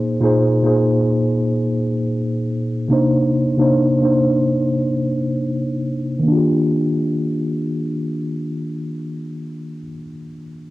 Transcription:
tine electric piano
Already playing: A#2 A#3 D#4 G#4 C5
0.21 A#2 A#3 D#4 G#4
0.25 C5
0.63 A#2 A#3 D#4 G#4
0.67 C5
2.88 C3 A#3 D4 D#4
2.93 C5
3.58 C3 A#3 D4 D#4 C5
4.01 C3 A#3 D4 D#4
4.05 C5
6.20 D#3
6.24 A#3
6.28 D4
6.32 F4
6.37 G4

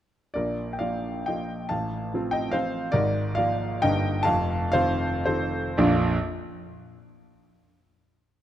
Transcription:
grand piano
0.34 A#1 A#2 A#4 D5
0.73 G5
0.79 F3 A#3 F4 D5 F5
1.26 F3 A#3 F4 D#5 G5
1.69 A1 A2 F5 A5
2.14 F3 C4 F4
2.31 D#5 G5
2.51 F3 C4 F4 C5 F5
2.92 G#1 G#2 A#4 D5
3.35 F3 A#3 F4 D5 F5
3.82 G1 G2 G3 A#3 D#4 D#5 G5
4.23 F1 F2 F5 A5
4.72 D#3 C4 F4 C5 F5
5.26 D#3 C4 F4 A4 C5
5.77 A#1 F2 F3 A#3 D4 F4 D5

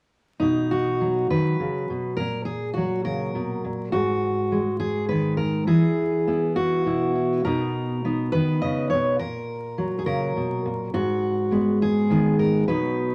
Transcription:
steel-string acoustic guitar
0.40 B2 D#4
0.71 F#4
1.01 F#3
1.30 D#3 B4
1.60 C#3
1.90 B2
2.17 A#2 A#4
2.45 G#4
2.74 F#3 F#4
3.05 C#3 A#4
3.35 B2
3.64 A#2
3.92 G#2 F#4
4.52 G#3
4.80 G#4
5.09 D#3 B4
5.37 A#4
5.67 E3 G#4
6.27 B3 E4
6.56 F#4
6.86 B2 E4
7.15 E4
7.45 B2 B3 D#4 A#4
8.05 B3 D#4
8.32 D#3 B4
8.62 C#3 D#5
8.90 B2 C#5
9.19 A#2 A#4
9.78 F#3
9.99 G#4
10.06 C#3 A#4
10.37 B2
10.66 A#2
10.94 G#2 F#4
11.51 G#3 B3
11.82 G#4
12.10 D#3 B3
12.39 A#4
12.68 B2 F#3 B3 D#4 B4

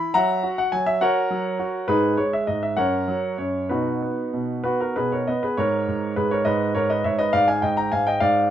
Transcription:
grand piano
Already playing: E4 B5
0.14 F#3 E5 F#5 A#5
0.43 F#4
0.58 F#5
0.72 F#3 G#5
0.86 E5
1.01 F#4 A#4 C#5 F#5
1.30 F#3
1.59 F#4
1.88 G#2 D#4 G#4 B4
2.17 G#3 C#5
2.33 E5
2.47 G#2 D#5
2.63 E5
2.77 F#2 A#4 C#5 F#5
3.08 F#3
3.38 F#2 C#5
3.69 B2 D#4 F#4 B4
4.02 B3
4.34 B2
4.64 B3 F#4 B4
4.80 F#4 A#4
4.96 B2 G#4 B4
5.12 A#4 C#5
5.27 B3 B4 D#5
5.43 G#4 B4
5.57 G#2 A#4 C#5
5.88 G#2
6.16 G#2 G#4 B4
6.31 A#4 C#5
6.45 G#2 B4 D#5
6.75 G#2 A#4 C#5
6.90 B4 D#5
7.04 G#2 C#5 E5
7.19 B4 D#5
7.33 G#2 D5 F5
7.48 F5 G#5
7.62 G#2 D#5 G5
7.77 G5 A#5
7.92 G#2 F5 G#5
8.07 D#5 G5
8.20 G#2 D5 F5

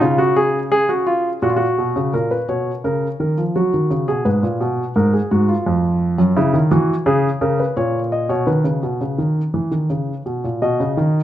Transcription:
grand piano
0.01 C#3 F4
0.18 F#4
0.36 G#4
0.72 G#4
0.89 F#4
1.07 F4
1.42 A#2 F#4
1.49 F4
1.56 F#4
1.78 B2
1.96 C#3
2.14 A#2 A#4
2.31 B4
2.49 B2 C#5
2.84 C#3 A#4
3.20 D#3 A#4
3.38 F3
3.56 F#3 F#4
3.74 D#3
3.90 C#3
4.08 B2 G#4
4.25 G#2 B4
4.43 A#2
4.60 B2
4.96 G#2 A#4
5.13 G#4
5.31 G#2 F#4
5.49 F4
5.66 F2
6.18 F#2
6.37 C#3 E4
6.54 D#3
6.71 E3 F#4
7.06 C#3 G#4
7.41 C#3 A#4
7.60 B4
7.77 A#2 C#5
8.12 D#5
8.29 B2 C#5
8.47 D#3 B4
8.64 C#3
8.83 B2
9.01 C#3
9.18 D#3
9.54 E3
9.71 D#3
9.90 C#3
10.26 B2
10.44 A#2
10.62 B2 D#5
10.80 C#3
10.97 D#3

